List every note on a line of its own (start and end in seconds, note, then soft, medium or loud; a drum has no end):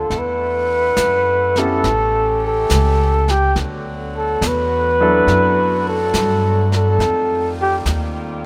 0.00 1.80 D3 medium
0.00 0.12 A#3 medium
0.00 0.12 C4 medium
0.00 0.12 D4 medium
0.00 0.12 F4 medium
0.00 0.13 A4 medium
0.00 0.20 A4 medium
0.00 3.39 A4 medium
0.09 0.94 E2 medium
0.09 3.39 A3 medium
0.09 1.82 E4 medium
0.09 1.81 F#5 medium
0.09 brush sweep soft
0.09 snare soft
0.18 1.60 B4 medium
0.97 1.81 F#2 medium
0.97 snare soft
0.97 hi-hat pedal medium
1.56 1.82 B3 medium
1.56 1.82 C#4 medium
1.56 1.82 E4 medium
1.56 1.81 G4 medium
1.56 1.82 A4 medium
1.56 2.43 A4 medium
1.56 snare soft
1.83 2.67 A1 medium
1.83 3.39 E3 medium
1.83 3.39 C#4 medium
1.83 3.39 G4 medium
1.83 brush sweep soft
1.83 snare soft
2.47 3.32 A4 medium
2.70 3.53 C#2 medium
2.70 snare medium
2.70 hi-hat pedal medium
3.28 3.57 G4 medium
3.28 snare soft
3.56 4.39 D2 medium
3.56 6.96 D3 medium
3.56 6.96 F#3 medium
3.56 8.46 A3 medium
3.56 6.96 B3 medium
3.56 6.96 F#4 medium
3.56 brush sweep soft
3.56 snare soft
4.17 4.49 A4 medium
4.41 5.25 E2 medium
4.41 snare medium
4.41 hi-hat pedal medium
4.47 5.88 B4 loud
5.00 5.25 F#3 medium
5.00 5.25 B3 medium
5.00 5.26 D4 medium
5.00 5.25 E4 medium
5.00 5.26 A4 medium
5.27 6.11 F#2 medium
5.27 brush sweep medium
5.27 snare soft
5.88 6.69 A4 medium
6.13 6.97 G2 medium
6.13 snare medium
6.13 hi-hat pedal soft
6.72 7.56 A4 medium
6.72 snare soft
6.98 7.83 F2 medium
6.98 8.46 D#3 medium
6.98 8.46 G3 medium
6.98 8.46 C4 medium
6.98 8.46 F4 medium
6.98 brush sweep soft
6.98 snare soft
7.61 7.77 G4 medium
7.85 8.46 D#2 medium
7.85 snare medium
7.85 hi-hat pedal soft